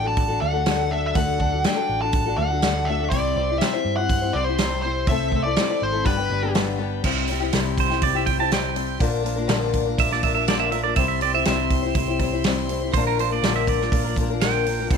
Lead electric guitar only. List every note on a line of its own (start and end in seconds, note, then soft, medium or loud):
0.07 0.41 A5 loud
0.41 0.92 F#5 medium
0.91 1.06 E5 medium
1.07 1.15 E5 medium
1.15 1.66 F#5 loud
1.66 2.01 G5 medium
2.01 2.36 A5 loud
2.37 2.88 F#5 loud
2.85 3.10 E5 medium
3.10 3.57 D5 medium
3.58 3.96 E5 medium
3.97 4.35 F#5 medium
4.33 4.44 D5 medium
4.44 4.81 C5 medium
4.82 5.08 C5 medium
5.09 5.43 E5 medium
5.44 5.82 D5 medium
5.83 6.06 C5 medium
6.06 6.52 B4 medium